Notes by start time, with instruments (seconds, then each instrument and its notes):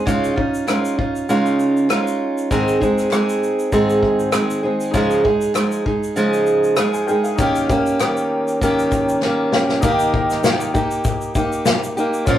0.06 steel-string acoustic guitar C#3 G#3 C#4 D#4 F4, kick, shaker
0.24 shaker
0.36 steel-string acoustic guitar C#4 D#4 F4, kick
0.54 shaker
0.67 steel-string acoustic guitar G#3 C#4 D#4 F4, cross-stick, clap, shaker
0.85 shaker
0.98 steel-string acoustic guitar C#4 D#4 F4, kick
1.16 shaker
1.29 steel-string acoustic guitar C#3 G#3 C#4 D#4 F4, shaker
1.46 shaker
1.60 shaker
1.77 shaker
1.89 steel-string acoustic guitar G#3 C#4 D#4 F4, cross-stick, clap, shaker
2.07 shaker
2.38 shaker
2.51 steel-string acoustic guitar G#2 D#3 G#3 C4 D#4 G#4, kick, shaker
2.68 shaker
2.81 steel-string acoustic guitar G#3 C4 D#4 G#4, kick, shaker
2.98 cross-stick, shaker
3.11 steel-string acoustic guitar G#3 C4 D#4 G#4, cross-stick, clap, shaker
3.29 shaker
3.43 shaker
3.59 shaker
3.72 steel-string acoustic guitar G#2 D#3 G#3 C4 D#4 G#4, kick, shaker
3.90 shaker
4.03 kick
4.20 shaker
4.32 steel-string acoustic guitar G#3 C4 D#4 G#4, cross-stick, clap, shaker
4.50 shaker
4.63 steel-string acoustic guitar G#3 C4 D#4 G#4
4.80 shaker
4.91 steel-string acoustic guitar C#3 F3 G#3 D#4 G#4, grand piano D#4 C#5, kick, shaker
4.95 grand piano F5
5.11 shaker
5.24 steel-string acoustic guitar G#3 D#4 G#4, kick
5.41 shaker
5.54 steel-string acoustic guitar F3 G#3 D#4 G#4, cross-stick, clap, shaker
5.72 shaker
5.86 steel-string acoustic guitar G#3 D#4 G#4, kick
6.03 shaker
6.16 steel-string acoustic guitar C#3 F3 G#3 D#4 G#4, shaker
6.33 shaker
6.46 shaker
6.64 shaker
6.77 steel-string acoustic guitar F3 G#3 D#4 G#4, grand piano G#4 F5, cross-stick, clap, shaker
6.94 grand piano C5 G#5, shaker
7.07 steel-string acoustic guitar D#4 G#4, grand piano A#4 G5, shaker
7.11 steel-string acoustic guitar G#3
7.24 grand piano G#4 F5, shaker
7.36 steel-string acoustic guitar D#3, grand piano D#4 C#5 G5, kick, shaker
7.40 steel-string acoustic guitar A#3 C#4 G4
7.55 shaker
7.70 steel-string acoustic guitar A#3 C#4 G4, kick, shaker
7.86 shaker
8.00 steel-string acoustic guitar D#3 A#3 C#4 G4, cross-stick, clap, shaker
8.17 shaker
8.48 shaker
8.62 steel-string acoustic guitar D#3 A#3 C#4 G4, kick, shaker
8.79 shaker
8.92 kick, clap, shaker
9.09 shaker
9.22 steel-string acoustic guitar D#3 A#3 C#4 G4, snare, clap
9.52 steel-string acoustic guitar A#3 C#4 G4, snare
9.69 snare
9.81 steel-string acoustic guitar D#3 A#3 D#4, grand piano D#4 G4 A#4, kick, shaker
9.85 steel-string acoustic guitar G4, grand piano F5
9.91 grand piano G5
9.99 shaker
10.14 kick
10.30 snare, shaker
10.44 steel-string acoustic guitar D#3 A#3 D#4 G4, snare, clap, shaker
10.60 shaker
10.74 steel-string acoustic guitar A#3 D#4 G4, kick, shaker
10.91 shaker
11.04 kick, shaker
11.21 shaker
11.35 steel-string acoustic guitar A#3 D#4 G4, kick, shaker
11.52 shaker
11.66 snare, clap, shaker
11.84 shaker
11.97 steel-string acoustic guitar A#3 D#4 G4, shaker
12.14 shaker
12.25 steel-string acoustic guitar A#2 F3 A#3 C#4 F4, grand piano C#4 F4 A#4 F5, kick, shaker